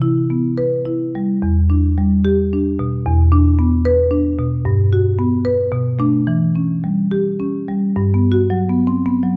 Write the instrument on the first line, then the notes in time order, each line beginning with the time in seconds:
marimba
Already playing: C3
0.02 E4
0.30 B3
0.58 B4
0.85 E4
1.15 G3
1.42 E2
1.70 D4
1.98 G3
2.25 G4
2.53 D4
2.79 B2
3.06 E2
3.32 D4
3.59 B3
3.85 B4
4.11 D4
4.39 B2
4.65 G2
4.93 F#4
5.19 B3
5.45 B4
5.72 B2
5.99 A3 D4
6.27 E3
6.56 C#4
6.84 G3
7.11 G4
7.40 C#4
7.69 G3
7.96 G2
8.14 B3
8.32 F#4
8.50 F#3
8.69 B3
8.87 C4
9.06 B3
9.23 F#3